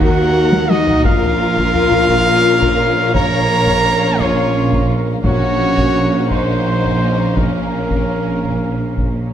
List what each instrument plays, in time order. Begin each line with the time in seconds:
Already playing: tuba D#2, double bass section D#2, cello section D#3, violin section A#3, woodwind section A#3 D#4 F#4 F#5
0.01 viola section F#4, french horn section F#4, violin section A#4, trumpet F#5, taiko
0.53 taiko high
0.69 french horn section D#4, viola section D#4, violin section F#4, trumpet D#5, taiko high
0.88 taiko low
1.04 tuba A#1, double bass section A#1, cello section A#2, violin section A#3 C#4 A#4, woodwind section A#3 A#4 F5, french horn section F4, viola section F4, trumpet F5, taiko
1.23 taiko low
1.57 taiko
1.75 taiko low
1.92 taiko low
2.09 taiko
2.62 taiko
3.14 french horn section A#4, viola section A#4, violin section C#5, trumpet A#5, taiko
3.67 taiko
4.19 french horn section C#4, viola section C#4, violin section F4, trumpet C#5, taiko
4.72 taiko
5.23 tuba A#1, double bass section A#1, cello section A#2, timpani A#2, violin section A#3 C#4 F#4, viola section C#4, french horn section C#4, trumpet C#5, woodwind section F#5, taiko
5.77 taiko
6.30 violin section D#4, french horn section C5, trumpet C5, viola section C5, taiko
6.84 taiko
7.37 viola section A#3, french horn section A#3, woodwind section A#3 C#4 A#4 F5, violin section C#4, trumpet A#4, taiko
7.91 taiko
8.44 taiko
8.98 taiko